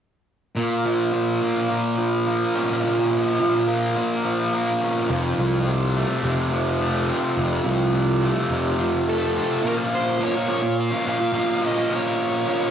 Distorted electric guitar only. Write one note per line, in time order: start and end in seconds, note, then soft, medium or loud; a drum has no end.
0.56 1.12 A#2 medium
0.85 1.97 F3 medium
1.13 1.68 A#2 medium
1.41 2.26 A#3 medium
1.69 2.82 A#2 medium
1.98 3.11 F3 medium
2.27 3.66 A#3 medium
2.55 3.97 C#4 medium
2.83 3.39 A#2 medium
3.12 4.24 F3 medium
3.40 3.95 A#2 medium
3.67 4.52 A#3 medium
3.97 5.10 A#2 medium
4.25 5.39 F3 medium
4.54 5.10 A#3 medium
4.81 5.10 C#4 medium
5.10 6.52 F2 medium
5.39 6.52 F3 medium
5.67 6.23 C3 medium
5.96 6.79 A3 medium
6.24 7.66 C3 medium
6.52 7.64 F3 medium
6.81 8.21 A3 medium
7.09 8.51 C4 medium
7.37 8.79 F2 medium
7.65 8.78 F3 medium
7.93 8.50 C3 medium
8.22 9.06 A3 medium
8.51 9.62 C3 medium
8.79 9.63 F3 medium
9.08 9.64 A3 medium
9.36 9.64 C4 medium
9.63 10.19 A#2 medium
9.63 10.20 F3 medium
9.63 10.21 A#3 medium
9.63 10.22 C#4 medium
10.20 10.47 A#2 medium
10.20 10.37 F3 medium
10.20 10.36 A#3 medium
10.20 10.34 C#4 medium
10.34 10.48 F3 soft
10.34 10.50 A#3 medium
10.34 10.50 C#4 medium
10.48 10.91 A#2 medium
10.48 10.63 F3 medium
10.48 10.61 A#3 medium
10.48 10.61 C#4 medium
10.62 muted distorted electric guitar stroke soft
10.91 11.06 F3 soft
10.91 11.06 A#3 medium
10.91 11.07 C#4 medium
11.05 11.31 A#2 medium
11.05 11.20 F3 medium
11.05 11.19 A#3 medium
11.05 11.18 C#4 medium
11.19 muted distorted electric guitar stroke soft
11.32 11.61 A#2 medium
11.32 11.62 F3 medium
11.32 11.62 A#3 medium
11.32 11.63 C#4 medium
11.62 11.89 A#2 medium
11.62 11.78 F3 medium
11.62 11.76 A#3 medium
11.62 11.75 C#4 medium
11.76 11.91 F3 medium
11.76 11.91 A#3 medium
11.76 11.92 C#4 medium
11.90 12.45 A#2 medium
11.90 12.47 F3 medium
11.90 12.47 A#3 medium
11.90 12.48 C#4 medium
12.47 12.71 A#2 medium
12.47 12.63 F3 medium
12.47 12.61 A#3 medium
12.47 12.59 C#4 medium
12.60 12.71 F3 medium
12.60 12.71 A#3 medium
12.60 12.71 C#4 medium